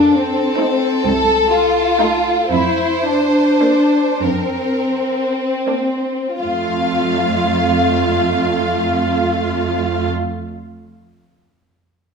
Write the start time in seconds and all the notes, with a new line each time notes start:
Already playing: F2 D4 A4
0.15 C4
0.59 A3 D#4
1.05 C2 A4
1.51 F4
2.01 A3 D#4
2.50 F2 E4 C5
3.06 D4
3.62 A#3 D4
4.23 F2 C4 A#4
5.68 A#3 D4
6.40 F2 A3 F4 F5